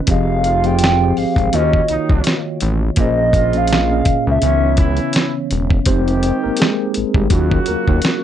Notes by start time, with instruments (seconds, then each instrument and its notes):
0.07 analog synth bass F1, tine electric piano F3 C4 G4 G#4, kick, closed hi-hat
0.11 tine electric piano D#5, soft synth lead F5
0.44 horn section F3 F4, closed hi-hat
0.64 tine electric piano F3 C4 G4 G#4, soft synth lead G5, closed hi-hat
0.68 tine electric piano F5
0.79 closed hi-hat
0.84 snare
1.00 tine electric piano F3 C4 G4 G#4
1.05 tine electric piano C5
1.17 analog synth bass G#1, soft synth lead F5, open hi-hat
1.36 analog synth bass G#1, kick, closed hi-hat
1.52 analog synth bass D#2, horn section C#3 C#4, tine electric piano D#3 A#3 F4 F#4, soft synth lead D#5, closed hi-hat
1.56 tine electric piano C5
1.62 tine electric piano C#5
1.73 kick
1.88 analog synth bass C2, horn section D#3 D#4, closed hi-hat
2.10 analog synth bass C2, kick
2.24 snare, closed hi-hat
2.61 analog synth bass A1, closed hi-hat
2.96 analog synth bass A#1, tine electric piano A#2 A#3 C#4 G#4, soft synth lead D#5, kick, closed hi-hat
3.01 tine electric piano C5
3.33 horn section F3 F4, kick, closed hi-hat
3.53 tine electric piano A#2 A#3 C#4 G#4, soft synth lead F5, closed hi-hat
3.58 tine electric piano D#5
3.67 closed hi-hat
3.72 soft synth lead F5, snare
3.89 tine electric piano A#2 A#3 C#4 G#4
3.93 tine electric piano D#5
4.05 analog synth bass C#2, kick, closed hi-hat
4.27 analog synth bass C#2, soft synth lead E5
4.41 analog synth bass C#2, tine electric piano C#3 E3 B3 C#4, horn section D#3 C#4, closed hi-hat
4.45 tine electric piano C#5
4.77 horn section E3 E4, kick, closed hi-hat
4.97 closed hi-hat
5.13 snare, closed hi-hat
5.51 analog synth bass E1, closed hi-hat
5.71 kick
5.86 analog synth bass F1, horn section D#3 C4 G4, tine electric piano G#3 C4 D#4 G4 C5, kick, closed hi-hat
6.08 closed hi-hat
6.23 closed hi-hat
6.44 analog synth bass G#1, tine electric piano A#3 A#4
6.57 tine electric piano G#4, closed hi-hat
6.61 tine electric piano G#3, snare
6.94 analog synth bass G#1, closed hi-hat
7.14 analog synth bass G#1, tine electric piano G3 G4, kick
7.30 analog synth bass D#2, horn section C#3 A#3 F#4, tine electric piano F#3 C#4 F4 F#4, kick, closed hi-hat
7.51 kick
7.66 analog synth bass D#2, tine electric piano A#3 A#4, closed hi-hat
7.88 analog synth bass D#2, kick
8.02 snare, closed hi-hat